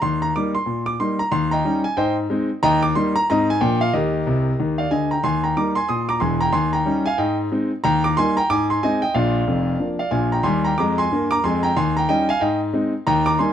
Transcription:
0.02 D#2 C6
0.22 A#5
0.36 G3 A#3 D#4 D6
0.55 C6
0.66 A#2
0.86 D6
1.00 G3 A#3 D#4 C6
1.19 A#5
1.32 D#2 C6
1.51 D#5 G5 A#5
1.65 G3 C#4 D#4
1.84 G#5
1.97 G#2 C5 D#5 G5
2.30 G#3 C4 D#4
2.63 D#2 D#5 G5 A#5
2.83 D6
2.95 G3 A#3 D#4 C6
3.16 A#5
3.30 G#2 G#3 C4 D#4 D#5 A#5
3.50 G#5
3.61 A#2 F3 A#3 D4 G5
3.81 F5
3.93 D#2 G4 A#4 D#5
4.27 C2 C3
4.59 D#2 D#3
4.78 D5 F5
4.91 D2 D3 D#5 G#5
5.11 G5 A#5
5.24 D#2 G#5 C6
5.44 G5 A#5
5.57 G3 A#3 D#4 A#5 D6
5.75 G#5 C6
5.89 A#2 C6 D#6
6.09 A#5 D6
6.20 E1 E2 G#5 C6
6.41 G5 A#5
6.52 D#2 G#5 C6
6.73 G5 A#5
6.86 G3 C#4 D#4
7.06 F5 G#5
7.18 G#2 D#5 G5
7.52 G#3 C4 D#4
7.84 D#2 G5 A#5
8.04 A#5 D6
8.17 G3 A#3 D#4 G#5 C6
8.37 G5 A#5
8.50 G#2 G#5 D6
8.70 G#5 C6
8.83 G#3 C4 D#4 D#5 G#5
9.02 D#5 G5
9.14 A#1 A#2 D5 F5
9.47 F1 F2
9.80 F3 A#3 D4
9.99 D5 F5
10.11 A#1 A#2 F5 G#5
10.32 G5 A#5
10.43 D#2 G3 G#5 C6
10.65 G5 A#5
10.78 F2 G#3 A#5 D6
10.98 G#5 C6
11.11 G2 A#3
11.31 A#5 D6
11.44 F2 G#3 G#5 C6
11.63 G5 A#5
11.76 D#2 G#5 C6
11.97 G5 A#5
12.09 G3 C#4 D#4 D#5 G5
12.29 F5 G#5
12.41 G#2 D#5 G5
12.73 G#3 C4 D#4
13.07 D#2 G5 A#5
13.26 A#5 D6
13.39 G3 A#3 D#4 G#5 C6

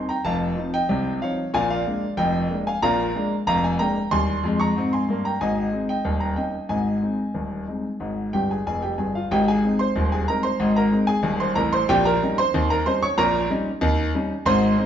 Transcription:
Already playing: D#3 C4 D#4
0.09 G5 A#5
0.25 F1 F2 F5 A5
0.56 F3 C4 D#4
0.74 D#5 G5
0.89 C2 C3
1.22 F3 C4 D#4 C#5 F5
1.54 A#1 A#2 F5 G#5
1.70 D5 F5
1.86 G#3 A#3 D4
2.17 F1 F2 D#5 G5
2.50 G#3 A#3 D4
2.67 F5 G#5
2.82 A#1 A#2 F5 A#5
3.15 G#3 A#3 D4
3.47 F1 F2 F5 A#5
3.64 F5 G#5
3.79 G#3 A#3 D4 G5 A#5
4.11 D#2 G3 G#5 C6
4.43 F2 G#3
4.60 A#5 C#6
4.76 G#2 C4
4.93 G#5 C6
5.08 G2 A#3
5.25 G5 A#5
5.41 G#1 G#2 D#5 G#5
5.73 G#3 C4 D#4
5.89 D#5 G5
6.05 D#1 D#2
6.20 G5 A#5
6.36 A#3 C#4 D#4 D#5 G5
6.69 G#1 G#2 D#5 G#5
7.02 G#3 C4 D#4
7.34 D#1 D#2
7.68 G#3 C4 D#4
8.00 G#1 G#2
8.33 G1 G2 G4 G5
8.51 G#4 G#5
8.66 F1 F2 G#4 G#5
8.82 G4 G5
8.98 G1 G2 G#4 G#5
9.15 F4 F5
9.31 G#1 G#2 G4 G5
9.48 G#4 G#5
9.64 G#3 C4 D#4
9.79 C5 C6
9.96 D#1 D#2
10.12 G#4 G#5
10.28 G#3 C4 D#4 A#4 A#5
10.43 C5 C6
10.60 G#1 G#2
10.76 A#4 A#5
10.92 G#3 C4 D#4
11.07 G#4 G#5
11.23 D#1 D#2
11.40 C5 C6
11.55 A1 A2 A#4 A#5
11.73 C5 C6
11.89 A#1 A#2 G4 G5
12.05 A#4 A#5
12.22 G3 C#4 D#4
12.38 C5 C6
12.54 D#2 D#3
12.70 A#4 A#5
12.86 G3 C#4 D#4 C5 C6
13.03 C#5 C#6
13.18 A#1 A#2 A#4 A#5
13.50 G3 C#4 D#4
13.81 D#2 D#3
14.15 G3 C#4 D#4
14.45 G#1 G#2 C5 C6
14.78 G#3 C4 D#4

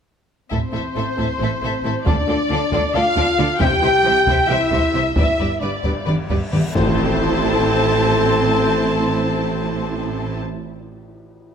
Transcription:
0.49 A1 A2 A3 C4 E4 A4 C5 E5, taiko
0.54 C5
0.72 A1 A2 A3 E4 A4 E5
0.95 A1 A2 A3 E4 A4 E5
1.17 A1 A2 A3 E4 A4 E5, taiko
1.39 A1 A2 A3 E4 A4 E5
1.62 A1 A2 A3 E4 A4 E5
1.84 A1 A2 A3 E4 A4 E5
2.05 D2 D3 A3 D4 F4 A4 D5, taiko
2.27 D2 D3 A3 F4 A4 D5
2.50 D2 D3 A3 F4 A4 D5
2.71 D2 D3 A3 F4 A4 D5, taiko
2.94 D2 D3 A3 F4 A4 D5 F5
3.16 D2 D3 A3 F4 A4 D5, taiko
3.38 D2 D3 A3 F4 A4 D5
3.58 C2 E3 G4 C5 E5 G5, taiko
3.62 C3
3.81 C2 C3 E3 G4 C5 E5
4.04 C2 C3 E3 G4 C5 E5
4.26 C2 C3 E3 G4 C5 E5, taiko
4.48 C2 C3 E3 E4 G4 C5 E5
4.70 C2 C3 E3 G4 C5 E5, taiko
4.92 C2 C3 E3 G4 C5 E5
5.15 G1 G2 G3 E4 G4 B4 D5 E5, taiko, reverse cymbal
5.39 G1 G2 G3 G4 B4 D5
5.60 G1 G2 G3 D4 G4 B4 D5
5.84 G1 G2 G3 G4 B4 D5, taiko
6.06 G1 G2 G3 G4 B4 D5, taiko mid
6.29 G1 G2 G3 G4 B4 D5, taiko
6.52 G1 G2 G3 G4 B4 D5, taiko mid
6.75 A1 A2 C4 E4 A4 C5 A5, taiko low, tam-tam, impact

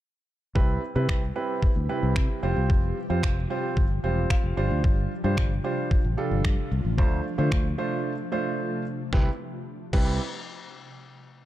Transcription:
0.55 C2 C3 G3 C4 E4 G4 B4, kick
0.95 C3 G3 C4 E4 B4
1.09 C2, finger snap, kick
1.35 G3 C4 E4 B4
1.63 kick
1.76 D2
1.89 G3 C4 E4 B4
2.03 C2
2.16 C3, finger snap, kick
2.42 F1 F3 G3 C4 F4 C5
2.56 C2
2.70 F1, kick
3.10 F2 G3 C4 F4 C5
3.23 F1, finger snap, kick
3.50 G3 C4 F4 C5
3.77 G1, kick
4.04 E1 G3 C4 F4 C5 G5
4.30 F5, finger snap, kick
4.44 F1
4.57 G1 F3 G3 D4 F4 C5
4.71 D2
4.84 G1, kick
5.24 G2 G3 D4 F4 C5
5.37 G1, finger snap, kick
5.64 G3 D4 F4 C5
5.91 kick
6.05 A1
6.17 G3 D4 F4 A4
6.31 G1
6.45 G2, finger snap, kick
6.72 C2
6.85 A1
6.98 D2 A3 D4 F4 C5, kick
7.38 D3 A3 D4 F4 C5
7.52 D2, finger snap, kick
7.78 A3 D4 F4 C5
8.32 A3 D4 F4 C5
9.13 C2 G3 C4 E4 B4, kick, snare
9.93 C2 G3 C4 E4 B4, kick, crash

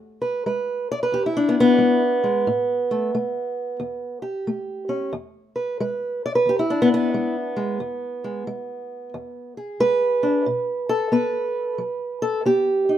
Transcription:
Already playing: E2
0.22 B4
0.46 G#3 B4
0.92 D5
1.03 B4
1.12 E2 G4
1.26 E4
1.37 D4
1.49 B3
1.60 B3
1.78 G#3
2.24 G#3
2.47 A2
2.91 A3
3.15 A3
3.80 E2
4.22 G4
4.47 A3
4.89 C#4
5.13 E2
5.56 B4
5.80 G#3 B4
6.26 D5
6.35 B4
6.46 E2 G4
6.59 E4
6.70 D4
6.82 B3
6.94 B3
7.14 G#3
7.57 G#3
7.80 E2
8.24 G#3
8.47 G#3
9.14 E2
9.57 G#4
9.80 G#3 B4
10.23 D4
10.46 B2
10.89 A4
11.12 B3 B4
11.78 F#3
12.22 A4
12.46 B3 G4
12.89 D#4

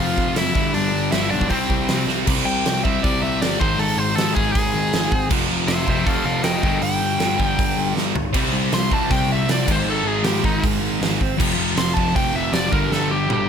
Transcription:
Already playing: F2 C3 F3 C4
0.00 F1 C3 F3 F4 F5
0.18 F1, kick
0.36 F#1 E4 E5, snare, open hi-hat
0.54 G1 G2 D3 G3, kick
0.74 G1 D4 D5, open hi-hat
0.94 G1
1.12 G1 G2 D3 G3 E4 E5, snare, open hi-hat
1.30 B1 D3 G3 D4 D5
1.35 G2
1.41 kick
1.49 C2 C3 G3 C4 C5, kick, open hi-hat
1.70 C2, kick
1.88 C2, snare, open hi-hat
2.07 C2 C3 G3 C4, snare
2.27 C2 C3 G3 C4, kick, crash
2.45 C2 G5
2.66 C2, snare, open hi-hat
2.84 C2 C3 G3 C4 E5, kick
3.01 C2 C3 G3 D5, kick, open hi-hat
3.06 C4
3.22 C2 E5
3.41 G1 D5, snare, open hi-hat
3.59 G#1 G#2 D#3 G#3 C5, kick
3.79 G#1 A4, open hi-hat
3.97 G#1 C5
4.15 G#1 G#2 D#3 G#3 A4, snare, open hi-hat
4.33 G#1 D#3 G#3 G#4, kick
4.37 G#2
4.53 G#1 G#4, kick, open hi-hat
4.74 G#1
4.93 G#1, snare, open hi-hat
5.12 G#1, kick
5.30 F1 F2 C3 F3, kick, crash
5.51 F1
5.68 F1 C5 E5, snare, open hi-hat
5.87 F1 F2 C3 F3 C5 E5, kick
6.05 F1 F2 C3 F3 A4 F5, kick, open hi-hat
6.25 F1 A4 F5
6.43 F1 D#5 G5, snare, open hi-hat
6.62 G1 G2 D3 G3 D#5 G5, kick
6.82 G1 G5, open hi-hat
7.01 G1
7.19 G1 G2 D3 G3, snare, open hi-hat
7.37 G1 D3 G3, kick
7.41 G2
7.59 G1, kick, open hi-hat
7.77 G1
7.94 G1, snare
8.15 G1, floor tom
8.33 C2 C3 G3 C4, kick, open hi-hat, crash
8.53 C2
8.71 C2 C6, snare, open hi-hat
8.91 C2 C3 G3 C4 A5, kick
9.10 C2 C3 G3 C4 G5, kick, open hi-hat
9.28 C2
9.32 E5
9.47 C2 D5, snare, open hi-hat
9.65 G#1 G#2 D#3 G#3, kick, crash
9.72 C5
9.85 G#1
9.90 A4
10.04 G#1 G#4
10.23 G#1 G#2 G4, snare, open hi-hat
10.27 D#3 G#3
10.42 G#1 G#2 D#3 G#3 D#4, kick
10.64 G#1, kick, open hi-hat
10.81 G#1
11.00 G#1 G#2 D#3 G#3, snare, open hi-hat
11.21 G#1, kick
11.38 F1 F2 C3 F3, kick, crash
11.58 F1
11.76 F1 C6, snare, open hi-hat
11.94 F1 C3 F3 A5, kick
11.98 F2
12.12 F1 F2 C3 G5, kick, open hi-hat
12.17 F3
12.34 F1 E5
12.53 F1 D5, snare, open hi-hat
12.71 G1 G2 D3 G3 A#4, kick
12.90 G1 A4, snare
13.11 G1 G4
13.28 G1 G2 D3 G3, high tom
13.33 G4

